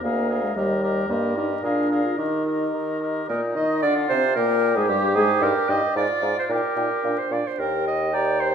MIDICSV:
0, 0, Header, 1, 6, 480
1, 0, Start_track
1, 0, Key_signature, -3, "major"
1, 0, Tempo, 538600
1, 28, Time_signature, 2, 2, 24, 8
1, 7618, End_track
2, 0, Start_track
2, 0, Title_t, "Flute"
2, 0, Program_c, 0, 73
2, 24, Note_on_c, 0, 77, 35
2, 258, Note_off_c, 0, 77, 0
2, 276, Note_on_c, 0, 77, 37
2, 492, Note_off_c, 0, 77, 0
2, 498, Note_on_c, 0, 75, 37
2, 730, Note_off_c, 0, 75, 0
2, 739, Note_on_c, 0, 75, 43
2, 958, Note_off_c, 0, 75, 0
2, 963, Note_on_c, 0, 75, 42
2, 1202, Note_off_c, 0, 75, 0
2, 1214, Note_on_c, 0, 75, 38
2, 1449, Note_off_c, 0, 75, 0
2, 1460, Note_on_c, 0, 77, 35
2, 1695, Note_off_c, 0, 77, 0
2, 1706, Note_on_c, 0, 77, 38
2, 1943, Note_off_c, 0, 77, 0
2, 1954, Note_on_c, 0, 75, 29
2, 2194, Note_off_c, 0, 75, 0
2, 2201, Note_on_c, 0, 75, 32
2, 2681, Note_off_c, 0, 75, 0
2, 2687, Note_on_c, 0, 75, 32
2, 2925, Note_off_c, 0, 75, 0
2, 2934, Note_on_c, 0, 70, 49
2, 2987, Note_off_c, 0, 70, 0
2, 3169, Note_on_c, 0, 75, 51
2, 3415, Note_on_c, 0, 74, 58
2, 3429, Note_off_c, 0, 75, 0
2, 3648, Note_off_c, 0, 74, 0
2, 3654, Note_on_c, 0, 72, 63
2, 3707, Note_off_c, 0, 72, 0
2, 3884, Note_on_c, 0, 70, 67
2, 4244, Note_on_c, 0, 68, 59
2, 4258, Note_off_c, 0, 70, 0
2, 4360, Note_on_c, 0, 67, 61
2, 4373, Note_off_c, 0, 68, 0
2, 4584, Note_off_c, 0, 67, 0
2, 4589, Note_on_c, 0, 68, 70
2, 4643, Note_off_c, 0, 68, 0
2, 4837, Note_on_c, 0, 79, 58
2, 4890, Note_off_c, 0, 79, 0
2, 5081, Note_on_c, 0, 79, 44
2, 5134, Note_off_c, 0, 79, 0
2, 5315, Note_on_c, 0, 77, 40
2, 5369, Note_off_c, 0, 77, 0
2, 5554, Note_on_c, 0, 77, 38
2, 5608, Note_off_c, 0, 77, 0
2, 5805, Note_on_c, 0, 79, 37
2, 5858, Note_off_c, 0, 79, 0
2, 6034, Note_on_c, 0, 79, 32
2, 6088, Note_off_c, 0, 79, 0
2, 6275, Note_on_c, 0, 77, 32
2, 6329, Note_off_c, 0, 77, 0
2, 6515, Note_on_c, 0, 77, 35
2, 6570, Note_off_c, 0, 77, 0
2, 6776, Note_on_c, 0, 79, 49
2, 7255, Note_on_c, 0, 82, 44
2, 7268, Note_off_c, 0, 79, 0
2, 7618, Note_off_c, 0, 82, 0
2, 7618, End_track
3, 0, Start_track
3, 0, Title_t, "Clarinet"
3, 0, Program_c, 1, 71
3, 30, Note_on_c, 1, 68, 35
3, 257, Note_off_c, 1, 68, 0
3, 262, Note_on_c, 1, 68, 40
3, 495, Note_off_c, 1, 68, 0
3, 499, Note_on_c, 1, 67, 41
3, 730, Note_off_c, 1, 67, 0
3, 738, Note_on_c, 1, 67, 43
3, 958, Note_off_c, 1, 67, 0
3, 963, Note_on_c, 1, 67, 41
3, 1202, Note_off_c, 1, 67, 0
3, 1216, Note_on_c, 1, 67, 38
3, 1446, Note_off_c, 1, 67, 0
3, 1451, Note_on_c, 1, 68, 39
3, 1685, Note_off_c, 1, 68, 0
3, 1691, Note_on_c, 1, 68, 39
3, 1932, Note_off_c, 1, 68, 0
3, 1938, Note_on_c, 1, 67, 32
3, 2176, Note_off_c, 1, 67, 0
3, 2181, Note_on_c, 1, 67, 33
3, 2668, Note_off_c, 1, 67, 0
3, 2673, Note_on_c, 1, 67, 32
3, 2918, Note_off_c, 1, 67, 0
3, 2930, Note_on_c, 1, 70, 49
3, 3038, Note_off_c, 1, 70, 0
3, 3167, Note_on_c, 1, 75, 56
3, 3399, Note_off_c, 1, 75, 0
3, 3404, Note_on_c, 1, 74, 68
3, 3513, Note_off_c, 1, 74, 0
3, 3645, Note_on_c, 1, 72, 74
3, 3873, Note_off_c, 1, 72, 0
3, 3878, Note_on_c, 1, 70, 68
3, 4229, Note_off_c, 1, 70, 0
3, 4244, Note_on_c, 1, 68, 58
3, 4348, Note_off_c, 1, 68, 0
3, 4353, Note_on_c, 1, 67, 76
3, 4592, Note_on_c, 1, 68, 79
3, 4606, Note_off_c, 1, 67, 0
3, 4836, Note_on_c, 1, 70, 74
3, 4849, Note_off_c, 1, 68, 0
3, 5072, Note_on_c, 1, 75, 73
3, 5086, Note_off_c, 1, 70, 0
3, 5309, Note_off_c, 1, 75, 0
3, 5316, Note_on_c, 1, 74, 65
3, 5666, Note_off_c, 1, 74, 0
3, 5693, Note_on_c, 1, 72, 56
3, 5742, Note_off_c, 1, 72, 0
3, 5799, Note_on_c, 1, 70, 56
3, 6401, Note_on_c, 1, 72, 51
3, 6414, Note_off_c, 1, 70, 0
3, 6528, Note_on_c, 1, 74, 53
3, 6542, Note_off_c, 1, 72, 0
3, 6657, Note_on_c, 1, 72, 55
3, 6670, Note_off_c, 1, 74, 0
3, 6767, Note_on_c, 1, 70, 69
3, 6781, Note_off_c, 1, 72, 0
3, 7003, Note_off_c, 1, 70, 0
3, 7014, Note_on_c, 1, 75, 67
3, 7252, Note_on_c, 1, 74, 68
3, 7266, Note_off_c, 1, 75, 0
3, 7486, Note_on_c, 1, 72, 70
3, 7499, Note_off_c, 1, 74, 0
3, 7618, Note_off_c, 1, 72, 0
3, 7618, End_track
4, 0, Start_track
4, 0, Title_t, "Oboe"
4, 0, Program_c, 2, 68
4, 32, Note_on_c, 2, 70, 35
4, 262, Note_off_c, 2, 70, 0
4, 275, Note_on_c, 2, 70, 35
4, 501, Note_off_c, 2, 70, 0
4, 512, Note_on_c, 2, 70, 41
4, 737, Note_off_c, 2, 70, 0
4, 742, Note_on_c, 2, 70, 41
4, 971, Note_off_c, 2, 70, 0
4, 988, Note_on_c, 2, 70, 38
4, 1215, Note_off_c, 2, 70, 0
4, 1229, Note_on_c, 2, 70, 36
4, 1457, Note_off_c, 2, 70, 0
4, 1462, Note_on_c, 2, 70, 37
4, 1696, Note_off_c, 2, 70, 0
4, 1709, Note_on_c, 2, 70, 36
4, 1945, Note_off_c, 2, 70, 0
4, 1950, Note_on_c, 2, 70, 29
4, 2186, Note_off_c, 2, 70, 0
4, 2192, Note_on_c, 2, 70, 28
4, 2676, Note_off_c, 2, 70, 0
4, 2692, Note_on_c, 2, 70, 29
4, 2928, Note_off_c, 2, 70, 0
4, 2932, Note_on_c, 2, 63, 41
4, 3416, Note_on_c, 2, 65, 47
4, 3429, Note_off_c, 2, 63, 0
4, 3889, Note_off_c, 2, 65, 0
4, 3897, Note_on_c, 2, 67, 67
4, 5284, Note_off_c, 2, 67, 0
4, 5317, Note_on_c, 2, 65, 52
4, 5804, Note_on_c, 2, 67, 45
4, 5818, Note_off_c, 2, 65, 0
4, 6525, Note_off_c, 2, 67, 0
4, 7248, Note_on_c, 2, 79, 56
4, 7618, Note_off_c, 2, 79, 0
4, 7618, End_track
5, 0, Start_track
5, 0, Title_t, "French horn"
5, 0, Program_c, 3, 60
5, 25, Note_on_c, 3, 58, 61
5, 374, Note_off_c, 3, 58, 0
5, 387, Note_on_c, 3, 56, 49
5, 496, Note_off_c, 3, 56, 0
5, 501, Note_on_c, 3, 55, 59
5, 964, Note_off_c, 3, 55, 0
5, 973, Note_on_c, 3, 58, 63
5, 1207, Note_off_c, 3, 58, 0
5, 1219, Note_on_c, 3, 63, 59
5, 1326, Note_off_c, 3, 63, 0
5, 1454, Note_on_c, 3, 62, 56
5, 1813, Note_off_c, 3, 62, 0
5, 1831, Note_on_c, 3, 65, 44
5, 1956, Note_on_c, 3, 63, 50
5, 1969, Note_off_c, 3, 65, 0
5, 2447, Note_off_c, 3, 63, 0
5, 2934, Note_on_c, 3, 58, 52
5, 3041, Note_off_c, 3, 58, 0
5, 3172, Note_on_c, 3, 63, 53
5, 3417, Note_on_c, 3, 62, 55
5, 3430, Note_off_c, 3, 63, 0
5, 3652, Note_off_c, 3, 62, 0
5, 3657, Note_on_c, 3, 60, 50
5, 3762, Note_off_c, 3, 60, 0
5, 3894, Note_on_c, 3, 58, 61
5, 4237, Note_off_c, 3, 58, 0
5, 4254, Note_on_c, 3, 56, 58
5, 4304, Note_off_c, 3, 56, 0
5, 4364, Note_on_c, 3, 55, 65
5, 4593, Note_off_c, 3, 55, 0
5, 4608, Note_on_c, 3, 56, 64
5, 4712, Note_off_c, 3, 56, 0
5, 4832, Note_on_c, 3, 63, 53
5, 4938, Note_off_c, 3, 63, 0
5, 5069, Note_on_c, 3, 63, 46
5, 5177, Note_off_c, 3, 63, 0
5, 5318, Note_on_c, 3, 63, 45
5, 5424, Note_off_c, 3, 63, 0
5, 5555, Note_on_c, 3, 63, 35
5, 5663, Note_off_c, 3, 63, 0
5, 5792, Note_on_c, 3, 63, 40
5, 5900, Note_off_c, 3, 63, 0
5, 6032, Note_on_c, 3, 63, 32
5, 6141, Note_off_c, 3, 63, 0
5, 6270, Note_on_c, 3, 62, 36
5, 6381, Note_off_c, 3, 62, 0
5, 6516, Note_on_c, 3, 62, 33
5, 6626, Note_off_c, 3, 62, 0
5, 6760, Note_on_c, 3, 67, 47
5, 7203, Note_off_c, 3, 67, 0
5, 7245, Note_on_c, 3, 67, 47
5, 7618, Note_off_c, 3, 67, 0
5, 7618, End_track
6, 0, Start_track
6, 0, Title_t, "Bassoon"
6, 0, Program_c, 4, 70
6, 27, Note_on_c, 4, 38, 45
6, 445, Note_off_c, 4, 38, 0
6, 500, Note_on_c, 4, 39, 50
6, 916, Note_off_c, 4, 39, 0
6, 976, Note_on_c, 4, 43, 55
6, 1397, Note_off_c, 4, 43, 0
6, 1451, Note_on_c, 4, 46, 47
6, 1884, Note_off_c, 4, 46, 0
6, 1942, Note_on_c, 4, 51, 42
6, 2382, Note_off_c, 4, 51, 0
6, 2436, Note_on_c, 4, 51, 37
6, 2871, Note_off_c, 4, 51, 0
6, 2928, Note_on_c, 4, 46, 48
6, 3169, Note_on_c, 4, 51, 47
6, 3182, Note_off_c, 4, 46, 0
6, 3407, Note_on_c, 4, 50, 52
6, 3420, Note_off_c, 4, 51, 0
6, 3647, Note_off_c, 4, 50, 0
6, 3651, Note_on_c, 4, 48, 56
6, 3885, Note_on_c, 4, 46, 62
6, 3899, Note_off_c, 4, 48, 0
6, 4241, Note_on_c, 4, 44, 60
6, 4254, Note_off_c, 4, 46, 0
6, 4361, Note_on_c, 4, 43, 68
6, 4374, Note_off_c, 4, 44, 0
6, 4596, Note_on_c, 4, 44, 61
6, 4609, Note_off_c, 4, 43, 0
6, 4819, Note_off_c, 4, 44, 0
6, 4825, Note_on_c, 4, 43, 62
6, 4933, Note_off_c, 4, 43, 0
6, 5069, Note_on_c, 4, 43, 50
6, 5176, Note_off_c, 4, 43, 0
6, 5306, Note_on_c, 4, 44, 53
6, 5414, Note_off_c, 4, 44, 0
6, 5544, Note_on_c, 4, 44, 47
6, 5654, Note_off_c, 4, 44, 0
6, 5783, Note_on_c, 4, 46, 43
6, 5894, Note_off_c, 4, 46, 0
6, 6026, Note_on_c, 4, 46, 38
6, 6136, Note_off_c, 4, 46, 0
6, 6276, Note_on_c, 4, 46, 38
6, 6385, Note_off_c, 4, 46, 0
6, 6513, Note_on_c, 4, 46, 39
6, 6623, Note_off_c, 4, 46, 0
6, 6767, Note_on_c, 4, 39, 49
6, 7618, Note_off_c, 4, 39, 0
6, 7618, End_track
0, 0, End_of_file